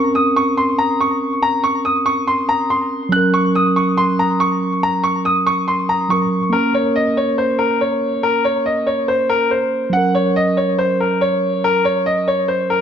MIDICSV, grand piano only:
0, 0, Header, 1, 2, 480
1, 0, Start_track
1, 0, Key_signature, -5, "minor"
1, 0, Tempo, 425532
1, 1606, Time_signature, 4, 2, 24, 8
1, 14453, End_track
2, 0, Start_track
2, 0, Title_t, "Grand piano"
2, 0, Program_c, 0, 0
2, 0, Note_on_c, 0, 85, 80
2, 147, Note_off_c, 0, 85, 0
2, 171, Note_on_c, 0, 87, 83
2, 387, Note_off_c, 0, 87, 0
2, 411, Note_on_c, 0, 85, 80
2, 628, Note_off_c, 0, 85, 0
2, 648, Note_on_c, 0, 84, 80
2, 866, Note_off_c, 0, 84, 0
2, 885, Note_on_c, 0, 82, 82
2, 1105, Note_off_c, 0, 82, 0
2, 1134, Note_on_c, 0, 85, 73
2, 1582, Note_off_c, 0, 85, 0
2, 1608, Note_on_c, 0, 82, 96
2, 1826, Note_off_c, 0, 82, 0
2, 1846, Note_on_c, 0, 85, 83
2, 2065, Note_off_c, 0, 85, 0
2, 2086, Note_on_c, 0, 87, 75
2, 2305, Note_off_c, 0, 87, 0
2, 2320, Note_on_c, 0, 85, 80
2, 2542, Note_off_c, 0, 85, 0
2, 2566, Note_on_c, 0, 84, 76
2, 2785, Note_off_c, 0, 84, 0
2, 2806, Note_on_c, 0, 82, 89
2, 3025, Note_off_c, 0, 82, 0
2, 3048, Note_on_c, 0, 84, 74
2, 3498, Note_off_c, 0, 84, 0
2, 3522, Note_on_c, 0, 90, 92
2, 3743, Note_off_c, 0, 90, 0
2, 3764, Note_on_c, 0, 85, 86
2, 3984, Note_off_c, 0, 85, 0
2, 4009, Note_on_c, 0, 87, 91
2, 4227, Note_off_c, 0, 87, 0
2, 4244, Note_on_c, 0, 85, 73
2, 4464, Note_off_c, 0, 85, 0
2, 4484, Note_on_c, 0, 84, 85
2, 4704, Note_off_c, 0, 84, 0
2, 4730, Note_on_c, 0, 82, 79
2, 4947, Note_off_c, 0, 82, 0
2, 4965, Note_on_c, 0, 85, 80
2, 5417, Note_off_c, 0, 85, 0
2, 5451, Note_on_c, 0, 82, 103
2, 5668, Note_off_c, 0, 82, 0
2, 5680, Note_on_c, 0, 85, 86
2, 5902, Note_off_c, 0, 85, 0
2, 5925, Note_on_c, 0, 87, 86
2, 6144, Note_off_c, 0, 87, 0
2, 6165, Note_on_c, 0, 85, 88
2, 6384, Note_off_c, 0, 85, 0
2, 6404, Note_on_c, 0, 84, 79
2, 6624, Note_off_c, 0, 84, 0
2, 6645, Note_on_c, 0, 82, 81
2, 6865, Note_off_c, 0, 82, 0
2, 6884, Note_on_c, 0, 85, 75
2, 7337, Note_off_c, 0, 85, 0
2, 7361, Note_on_c, 0, 70, 86
2, 7582, Note_off_c, 0, 70, 0
2, 7607, Note_on_c, 0, 73, 77
2, 7825, Note_off_c, 0, 73, 0
2, 7846, Note_on_c, 0, 75, 79
2, 8065, Note_off_c, 0, 75, 0
2, 8090, Note_on_c, 0, 73, 77
2, 8307, Note_off_c, 0, 73, 0
2, 8325, Note_on_c, 0, 72, 76
2, 8545, Note_off_c, 0, 72, 0
2, 8558, Note_on_c, 0, 70, 79
2, 8780, Note_off_c, 0, 70, 0
2, 8808, Note_on_c, 0, 73, 72
2, 9259, Note_off_c, 0, 73, 0
2, 9286, Note_on_c, 0, 70, 93
2, 9505, Note_off_c, 0, 70, 0
2, 9527, Note_on_c, 0, 73, 80
2, 9745, Note_off_c, 0, 73, 0
2, 9765, Note_on_c, 0, 75, 72
2, 9985, Note_off_c, 0, 75, 0
2, 10000, Note_on_c, 0, 73, 75
2, 10222, Note_off_c, 0, 73, 0
2, 10245, Note_on_c, 0, 72, 75
2, 10465, Note_off_c, 0, 72, 0
2, 10485, Note_on_c, 0, 70, 87
2, 10704, Note_off_c, 0, 70, 0
2, 10728, Note_on_c, 0, 72, 70
2, 11178, Note_off_c, 0, 72, 0
2, 11201, Note_on_c, 0, 78, 91
2, 11422, Note_off_c, 0, 78, 0
2, 11445, Note_on_c, 0, 73, 83
2, 11664, Note_off_c, 0, 73, 0
2, 11688, Note_on_c, 0, 75, 86
2, 11906, Note_off_c, 0, 75, 0
2, 11924, Note_on_c, 0, 73, 73
2, 12144, Note_off_c, 0, 73, 0
2, 12166, Note_on_c, 0, 72, 78
2, 12385, Note_off_c, 0, 72, 0
2, 12412, Note_on_c, 0, 70, 72
2, 12628, Note_off_c, 0, 70, 0
2, 12647, Note_on_c, 0, 73, 76
2, 13098, Note_off_c, 0, 73, 0
2, 13133, Note_on_c, 0, 70, 96
2, 13349, Note_off_c, 0, 70, 0
2, 13365, Note_on_c, 0, 73, 83
2, 13584, Note_off_c, 0, 73, 0
2, 13605, Note_on_c, 0, 75, 85
2, 13824, Note_off_c, 0, 75, 0
2, 13847, Note_on_c, 0, 73, 82
2, 14066, Note_off_c, 0, 73, 0
2, 14081, Note_on_c, 0, 72, 76
2, 14302, Note_off_c, 0, 72, 0
2, 14326, Note_on_c, 0, 70, 78
2, 14453, Note_off_c, 0, 70, 0
2, 14453, End_track
0, 0, End_of_file